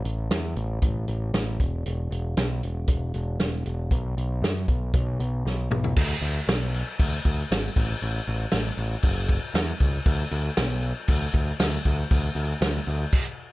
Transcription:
0.04 picked electric bass A1, closed hi-hat
0.30 picked electric bass E2, snare, closed hi-hat
0.56 picked electric bass A1, closed hi-hat
0.82 picked electric bass A1, kick, closed hi-hat
1.08 picked electric bass A1, closed hi-hat
1.34 picked electric bass A1, snare, closed hi-hat
1.60 picked electric bass E1, kick, closed hi-hat
1.86 picked electric bass E1, closed hi-hat
2.11 picked electric bass E1, closed hi-hat
2.37 picked electric bass B1, snare, closed hi-hat
2.63 picked electric bass E1, closed hi-hat
2.88 picked electric bass E1, kick, closed hi-hat
3.14 picked electric bass E1, closed hi-hat
3.39 picked electric bass E1, snare, closed hi-hat
3.66 picked electric bass E1, closed hi-hat
3.91 picked electric bass B1, kick, closed hi-hat
4.17 picked electric bass B1, closed hi-hat
4.42 picked electric bass F#2, snare, closed hi-hat
4.68 picked electric bass B1, kick, closed hi-hat
4.94 picked electric bass B1, kick, closed hi-hat
5.20 picked electric bass B1, closed hi-hat
5.45 picked electric bass B1, snare
5.70 picked electric bass B1, mid tom
5.84 floor tom
5.96 picked electric bass D2, kick, crash
6.21 picked electric bass D2, crash
6.48 picked electric bass B1, snare, crash
6.74 crash
6.99 picked electric bass D2, kick, crash
7.25 picked electric bass D2, kick, crash
7.51 picked electric bass G#1, snare, crash
7.76 picked electric bass A1, kick, crash
8.02 picked electric bass A1, crash
8.27 picked electric bass A1, crash
8.51 picked electric bass A1, snare, crash
8.77 picked electric bass A1, crash
9.03 picked electric bass F#1, kick, crash
9.28 kick, crash
9.54 picked electric bass E2, snare, crash
9.80 picked electric bass C#2, kick, crash
10.06 picked electric bass D2, kick, crash
10.31 picked electric bass D2, crash
10.57 picked electric bass B1, snare, crash
10.83 crash
11.08 picked electric bass D2, kick, crash
11.34 picked electric bass D2, kick, crash
11.60 picked electric bass D2, snare, crash
11.85 picked electric bass D2, kick, crash
12.11 picked electric bass D2, kick, crash
12.35 picked electric bass D2, crash
12.61 picked electric bass D2, snare, crash
12.87 picked electric bass D2, crash
13.13 kick, crash

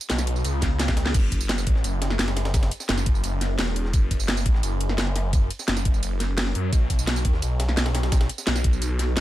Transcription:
0.01 tambourine
0.10 detuned saw bass B1, snare, closed hi-hat, ride, tambourine
0.18 snare, ride, tambourine
0.27 open hi-hat, ride
0.36 tambourine
0.45 detuned saw bass C#2, closed hi-hat, ride, tambourine
0.62 kick, snare, closed hi-hat, ride, tambourine
0.80 snare, closed hi-hat, ride, tambourine
0.88 kick, snare, ride, tambourine
0.97 snare, open hi-hat, ride
1.06 snare
1.14 detuned saw bass F#1, kick, closed hi-hat, crash, ride, tambourine
1.32 kick, closed hi-hat, ride, tambourine
1.41 tambourine
1.49 snare, closed hi-hat, ride, tambourine
1.58 tambourine
1.67 detuned saw bass A1, kick, closed hi-hat, ride
1.75 snare
1.84 detuned saw bass F#1, closed hi-hat, ride, tambourine
2.02 snare, closed hi-hat, ride
2.10 snare
2.19 detuned saw bass F#1, snare, closed hi-hat, ride, tambourine
2.28 snare, ride
2.37 snare, open hi-hat, ride
2.45 snare, ride
2.54 kick, snare, closed hi-hat, ride, tambourine
2.63 snare, ride
2.71 closed hi-hat, ride, tambourine
2.80 snare, tambourine
2.89 detuned saw bass F#1, snare, closed hi-hat, ride, tambourine
2.97 snare, ride, tambourine
3.06 kick, closed hi-hat, ride
3.15 tambourine
3.24 detuned saw bass F#1, closed hi-hat, ride, tambourine
3.41 snare, closed hi-hat, ride, tambourine
3.59 detuned saw bass E1, snare, closed hi-hat, ride, tambourine
3.67 snare
3.76 open hi-hat, ride
3.85 snare
3.93 detuned saw bass F#1, kick, closed hi-hat, ride, tambourine
4.11 kick, closed hi-hat, ride, tambourine
4.20 tambourine
4.28 snare, closed hi-hat, ride, tambourine
4.37 tambourine
4.46 detuned saw bass A1, kick, closed hi-hat, ride
4.55 snare
4.63 detuned saw bass F#1, closed hi-hat, ride, tambourine
4.81 closed hi-hat, ride
4.89 snare
4.98 detuned saw bass F#1, snare, closed hi-hat, ride, tambourine
5.07 snare
5.16 snare, open hi-hat, ride
5.33 kick, closed hi-hat, ride, tambourine
5.50 closed hi-hat, ride, tambourine
5.59 snare, tambourine
5.68 detuned saw bass F#1, snare, closed hi-hat, ride, tambourine
5.77 snare, ride, tambourine
5.85 kick, closed hi-hat, ride
5.94 tambourine
6.03 detuned saw bass F#1, closed hi-hat, ride, tambourine
6.20 snare, closed hi-hat, ride, tambourine
6.38 snare, closed hi-hat, ride, tambourine
6.46 snare
6.55 detuned saw bass F#2, open hi-hat
6.73 detuned saw bass B1, kick, closed hi-hat, ride, tambourine
6.90 kick, closed hi-hat, ride, tambourine
6.99 tambourine
7.07 snare, closed hi-hat, ride, tambourine
7.16 tambourine
7.25 detuned saw bass D#2, kick, closed hi-hat, ride
7.34 snare
7.42 detuned saw bass B1, closed hi-hat, ride, tambourine
7.60 snare, closed hi-hat, ride
7.68 snare
7.77 detuned saw bass B1, snare, closed hi-hat, ride, tambourine
7.86 snare, ride
7.95 snare, open hi-hat, ride
8.03 snare, ride
8.12 kick, snare, closed hi-hat, ride, tambourine
8.21 snare, ride
8.29 closed hi-hat, ride, tambourine
8.38 snare, tambourine
8.47 detuned saw bass B1, snare, closed hi-hat, ride, tambourine
8.56 snare, ride, tambourine
8.64 kick, closed hi-hat, ride
8.73 tambourine
8.82 detuned saw bass B1, closed hi-hat, ride, tambourine
8.99 snare, closed hi-hat, ride, tambourine
9.17 detuned saw bass A1, snare, closed hi-hat, ride, tambourine

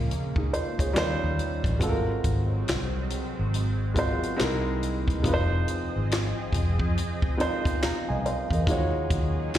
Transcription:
Already playing: analog synth pad C#3 G#3 A#3, grand piano G#3 C4 C#4 F4 A#4
0.11 closed hi-hat
0.36 grand piano D#4 G#4, kick
0.53 grand piano F4 C5, closed hi-hat
0.79 grand piano G#4 C#5, kick, closed hi-hat
0.93 fingered electric bass D#2, analog synth pad D#3 G3 C#4, grand piano G3 C#4 D#4 F4, snare, clap, closed hi-hat
0.98 grand piano C5
1.24 fingered electric bass D#2
1.39 closed hi-hat
1.64 fingered electric bass A1, kick, closed hi-hat
1.79 fingered electric bass G#1, analog synth pad F#3 G#3, grand piano G#3 C4 F4 F#4, kick, closed hi-hat
1.83 analog synth pad C4, grand piano A4
1.89 grand piano A#4
2.24 fingered electric bass G#1, kick, closed hi-hat
2.68 fingered electric bass C2, snare, clap, closed hi-hat
3.10 closed hi-hat
3.39 fingered electric bass G#1
3.54 closed hi-hat
3.94 grand piano G#3 C4 F4 F#4, kick, closed hi-hat
3.99 grand piano C5
4.23 closed hi-hat
4.37 analog synth pad C3 E3 A#3 D#5, grand piano G#3 C4 D#4 E4, snare, closed hi-hat
4.41 fingered electric bass C2, grand piano A#4, clap
4.83 closed hi-hat
5.08 kick, closed hi-hat
5.23 fingered electric bass F1, analog synth pad F3 C4 G#4, grand piano G#3 C4 D#4 F4, kick, closed hi-hat
5.27 grand piano B4
5.34 grand piano C5
5.68 closed hi-hat
5.96 fingered electric bass G#1
6.11 snare, clap, closed hi-hat
6.53 fingered electric bass F1, kick, closed hi-hat
6.79 fingered electric bass F2, kick
6.97 closed hi-hat
7.22 kick
7.37 grand piano G#3 C4 D#4 F4 C5, closed hi-hat
7.65 kick, closed hi-hat
7.82 grand piano F5 A#5, muted fingered electric bass stroke, snare, clap, closed hi-hat
8.09 fingered electric bass C2, grand piano D#5 G#5
8.26 grand piano C5 F5, closed hi-hat
8.50 fingered electric bass E2, grand piano A#4 D#5, kick, closed hi-hat
8.67 fingered electric bass D#2, analog synth pad D#3 F#3 C#4 D#4 G#4, grand piano G#3 D#4 F4 F#4, kick, closed hi-hat
8.71 grand piano C#5
9.10 fingered electric bass D#2, kick, closed hi-hat
9.54 fingered electric bass D#2, closed hi-hat

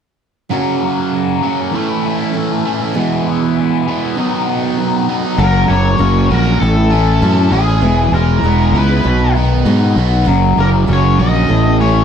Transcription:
0.49 steel-string acoustic guitar F#2 C#3 F#3 A#3 C#4 F#4, overdriven electric guitar F#3 A#3
0.53 overdriven electric guitar C#4 F#4
0.83 overdriven electric guitar F#3 A#3 C#4 F#4
0.98 overdriven electric guitar A#3 C#4 F#4
1.13 overdriven electric guitar F#3 A#3 C#4 F#4
1.43 overdriven electric guitar F#2 C#3 F#3 A#3 C#4
1.47 overdriven electric guitar F#4
1.59 overdriven electric guitar A#3 C#4 F#4
1.71 overdriven electric guitar A2 E3, steel-string acoustic guitar E3 A3 C#4 E4
1.76 overdriven electric guitar A3 C#4 E4
1.89 overdriven electric guitar A3 C#4 E4
2.05 overdriven electric guitar E3 A3 C#4 E4
2.21 overdriven electric guitar A3 C#4 E4
2.32 overdriven electric guitar A2, steel-string acoustic guitar E3 A3 C#4 E4
2.36 overdriven electric guitar E3 A3 C#4 E4
2.51 overdriven electric guitar A3 C#4 E4
2.65 overdriven electric guitar A2 E3 A3
2.81 overdriven electric guitar A3 C#4 E4
2.93 steel-string acoustic guitar E2 B2 E3 G#3 B3 E4
2.97 overdriven electric guitar E3 G#3 B3 E4
3.27 overdriven electric guitar E3 G#3 B3 E4
3.42 overdriven electric guitar G#3 B3 E4
3.57 overdriven electric guitar E3 G#3 B3 E4
3.87 overdriven electric guitar E2 B2 E3 G#3 B3
3.91 overdriven electric guitar E4
4.02 overdriven electric guitar G#3 B3 E4
4.15 overdriven electric guitar B2, steel-string acoustic guitar F#3 B3 D#4 F#4
4.19 overdriven electric guitar D#3 F#3 B3 D#4
4.32 overdriven electric guitar F#3 B3 D#4
4.47 overdriven electric guitar D#3 F#3 B3 D#4
4.63 overdriven electric guitar F#3 B3 D#4
4.76 overdriven electric guitar B2 D#3, steel-string acoustic guitar F#3 B3 D#4 F#4
4.80 overdriven electric guitar F#3 B3 D#4
4.94 overdriven electric guitar F#3 B3 D#4
5.08 overdriven electric guitar B2 F#3 B3
5.23 overdriven electric guitar F#3 B3 D#4
5.38 fingered electric bass F#1, steel-string acoustic guitar F#2 C#3 F#3 A#3 C#4 F#4, overdriven electric guitar F#3, lead electric guitar A#4
5.68 fingered electric bass F#1, steel-string acoustic guitar F#3 A#3 C#4 F#4, overdriven electric guitar A#3, lead electric guitar C#5
5.98 fingered electric bass F#1, steel-string acoustic guitar F#2 C#3 F#3 A#3 C#4 F#4, overdriven electric guitar C#4
6.30 fingered electric bass A#1, steel-string acoustic guitar F#3 A#3 C#4 F#4, overdriven electric guitar F#4, lead electric guitar A#4
6.45 steel-string acoustic guitar F#3 A#3 C#4 F#4
6.60 fingered electric bass A1, overdriven electric guitar A2, steel-string acoustic guitar A2 E3 A3 C#4 E4, lead electric guitar A4
6.76 steel-string acoustic guitar A3 C#4 E4
6.91 overdriven electric guitar E3, steel-string acoustic guitar E3 A3 C#4 E4
7.22 fingered electric bass F#2, steel-string acoustic guitar A2 E3 A3 C#4 E4, overdriven electric guitar C#4
7.36 steel-string acoustic guitar A3 C#4 E4
7.51 fingered electric bass A1, steel-string acoustic guitar E3 A3 C#4 E4, overdriven electric guitar E4, lead electric guitar G#4
7.82 fingered electric bass E1, steel-string acoustic guitar E2 B2 E3 G#3 B3 E4, overdriven electric guitar E3
8.12 fingered electric bass E1, steel-string acoustic guitar E3 G#3 B3 E4, overdriven electric guitar G#3, lead electric guitar A#4
8.42 fingered electric bass E1, steel-string acoustic guitar E2 B2 E3 G#3 B3 E4, overdriven electric guitar B3
8.72 fingered electric bass C#2, steel-string acoustic guitar E3 G#3 B3 E4, overdriven electric guitar E4
8.78 lead electric guitar B4
8.89 steel-string acoustic guitar E3 G#3 B3 E4
9.03 fingered electric bass B1, steel-string acoustic guitar B2 F#3 B3 D#4 F#4, overdriven electric guitar B2
9.19 steel-string acoustic guitar D#4 F#4
9.35 overdriven electric guitar D#3, steel-string acoustic guitar F#3 B3 D#4 F#4
9.65 fingered electric bass G#2, steel-string acoustic guitar B2 F#3 B3 D#4 F#4, overdriven electric guitar B3
9.80 steel-string acoustic guitar B3 D#4 F#4
9.96 fingered electric bass B1, steel-string acoustic guitar F#3 B3 D#4 F#4, overdriven electric guitar F#4
10.25 fingered electric bass F#1, steel-string acoustic guitar F#2 C#3 F#3 A#3 C#4 F#4, overdriven electric guitar F#3
10.56 fingered electric bass F#1, overdriven electric guitar C#3 A#3, steel-string acoustic guitar F#3 A#3 C#4 F#4, lead electric guitar A#4
10.87 fingered electric bass F#1, steel-string acoustic guitar F#2 C#3 F#3 A#3 C#4 F#4, overdriven electric guitar C#4
10.93 lead electric guitar C#5
11.18 fingered electric bass A#1, steel-string acoustic guitar F#3 A#3 C#4 F#4, overdriven electric guitar F#4, lead electric guitar D#5
11.34 steel-string acoustic guitar F#3 A#3 C#4 F#4
11.48 fingered electric bass A1, steel-string acoustic guitar A2 E3 A3 C#4 E4, overdriven electric guitar A2
11.65 steel-string acoustic guitar A3 C#4 E4
11.80 steel-string acoustic guitar E3 A3 C#4 E4, overdriven electric guitar E3, lead electric guitar C#5

